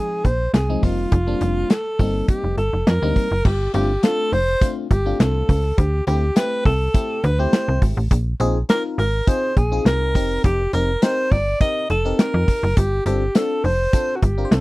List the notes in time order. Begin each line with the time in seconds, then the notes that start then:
Already playing: F3 G#3 C4 D#4 G#4
0.25 A#1 C5, kick, closed hi-hat
0.54 C2 G#4, snare, closed hi-hat
0.69 F3 G#3 C4 D#4
0.83 F1 G3 A#3 C4 D#4 F4, kick, open hi-hat
1.12 F1, kick, closed hi-hat
1.27 G3 A#3 C4 D4
1.41 F1, closed hi-hat
1.70 A4, snare, closed hi-hat
1.99 G1 G3 A#3 C4 D#4, kick, open hi-hat
2.28 G4, kick, closed hi-hat
2.44 F1
2.57 G1 A4, closed hi-hat
2.73 F1
2.87 F2 A#4, snare, closed hi-hat
3.02 D2 G3 A#3 C4 D#4
3.16 kick, open hi-hat
3.31 F#1
3.45 G1 G4, kick, crash
3.74 G1 A3 C4 D4 F4 G4, closed hi-hat
4.03 A3 C4 D4 F4 A4, snare, closed hi-hat
4.32 F1 C5, open hi-hat
4.61 A3 C4 D4 F4, kick, closed hi-hat
4.91 G1 G4, kick, closed hi-hat
5.06 A3 C4 D4 F4
5.20 C2 A4, snare, closed hi-hat
5.49 C#2, kick, open hi-hat
5.78 D2 G4, kick, closed hi-hat
6.07 D2 A3 C4 E4 G4, closed hi-hat
6.36 A3 C4 E4 G4 B4, snare, closed hi-hat
6.65 C2 A4, kick, open hi-hat
6.94 A3 C4 E4 G4, kick, closed hi-hat
7.24 D2 B4, closed hi-hat
7.39 A3 C4 E4 G4 C5
7.53 snare, closed hi-hat
7.68 C2
7.82 G#1, kick, open hi-hat
7.97 A1
8.11 A#1, kick, closed hi-hat
8.40 A#1 C4 D#4 F4 G#4, closed hi-hat
8.69 C4 D#4 F4 A#4, snare, closed hi-hat
8.98 G#1 A#4, open hi-hat
9.27 C4 D#4 F4 G#4 C5, kick, closed hi-hat
9.57 A#1 G#4, kick, closed hi-hat
9.72 C4 D#4 F4 G#4
9.85 C2 A#4, snare, closed hi-hat
10.15 F1 C4 D#4 G4 A#4, kick, open hi-hat
10.44 F1 G4, kick, closed hi-hat
10.73 F1 C4 D#4 G4 A#4, closed hi-hat
11.02 C4 D#4 G4 A#4 C5, snare, closed hi-hat
11.32 G1 D5, kick, open hi-hat
11.61 C4 D#4 G4 A#4 D#5, kick, closed hi-hat
11.90 F1 A4, closed hi-hat
12.05 C4 D#4 G4 A#4
12.19 A#4, snare, closed hi-hat
12.34 F2
12.48 kick, open hi-hat
12.63 F#1
12.77 G1 G4, kick, closed hi-hat
13.06 G1 C4 D4 F4 G4 A4, closed hi-hat
13.35 C4 D4 F4 A4, snare, closed hi-hat
13.64 F1 C5, open hi-hat
13.93 C4 D4 F4 A4, kick, closed hi-hat
14.16 F#4
14.22 G1 G4, kick, closed hi-hat
14.38 C4 D4 F4 A#4
14.45 C5
14.51 C2 A4, snare, closed hi-hat